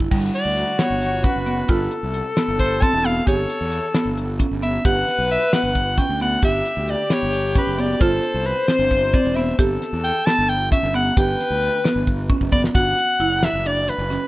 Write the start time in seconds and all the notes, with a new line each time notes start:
0.00 G1, kick
0.11 G1 G3 F#4, kick, crash
0.34 D5, closed hi-hat
0.45 D2
0.57 closed hi-hat
0.79 B3 C#5, snare, closed hi-hat
0.90 G1
1.02 snare, closed hi-hat
1.24 C#4 B4, kick, closed hi-hat
1.36 F#1
1.46 B3, closed hi-hat
1.68 G1 F4 A4, kick, closed hi-hat
1.91 closed hi-hat
2.03 C2
2.14 closed hi-hat
2.37 B3, snare, closed hi-hat
2.48 G1
2.59 C5, kick, closed hi-hat
2.82 C4 A5, kick, closed hi-hat
2.93 E1
3.04 B3 F5, closed hi-hat
3.25 G1 G4 A4 C#5, kick, closed hi-hat
3.50 closed hi-hat
3.61 E2
3.72 closed hi-hat
3.94 B3, snare, closed hi-hat
4.05 G1
4.17 closed hi-hat
4.39 C#4, kick, closed hi-hat
4.51 G1
4.62 B3 E5, closed hi-hat
4.85 G1 G4 B4 F#5, kick, closed hi-hat
5.08 snare, closed hi-hat
5.18 B1
5.30 E5, closed hi-hat
5.53 B3 F#5, snare, closed hi-hat
5.63 G1
5.75 kick, closed hi-hat
5.98 C#4 G5, kick, snare, closed hi-hat
6.09 D2
6.20 B3 F#5, snare, closed hi-hat
6.42 G1 G4 E5, kick, closed hi-hat
6.65 closed hi-hat
6.77 D2
6.88 D5, snare, closed hi-hat
7.10 B3 C#5, snare, closed hi-hat
7.23 G1
7.33 closed hi-hat
7.55 C#4 B4, kick, closed hi-hat
7.67 F#1
7.78 B3 D5, closed hi-hat
8.00 G1 F4 A4 C5, kick, closed hi-hat
8.23 closed hi-hat
8.34 C2
8.46 B4, closed hi-hat
8.67 C4 C5, snare, closed hi-hat
8.79 G1
8.91 kick, snare, closed hi-hat
9.14 C4 D5, kick, closed hi-hat
9.25 E1
9.35 B3 E5, snare, closed hi-hat
9.59 G1 G4 A4, kick, closed hi-hat
9.82 snare, closed hi-hat
9.93 E2
10.04 G5, closed hi-hat
10.26 B3 A5, snare, closed hi-hat
10.39 G1
10.49 G5, closed hi-hat
10.72 C#4 E5, kick, closed hi-hat
10.83 G1
10.94 B3 F#5, closed hi-hat
11.17 G1 G4 B4 G5, kick, closed hi-hat
11.40 snare, closed hi-hat
11.50 D2
11.62 closed hi-hat
11.84 B3, snare, closed hi-hat
11.96 G1
12.07 kick, closed hi-hat
12.30 C#4, kick
12.41 F#1, kick
12.52 B3 D5, kick
12.64 snare
12.75 G1 F#4 F#5, kick, closed hi-hat
12.98 closed hi-hat
13.20 F#1 E4, closed hi-hat
13.43 E5, snare, closed hi-hat
13.53 F#1
13.65 D4 D5, closed hi-hat
13.88 B4, snare, closed hi-hat
13.98 F#1
14.10 C#4, snare, closed hi-hat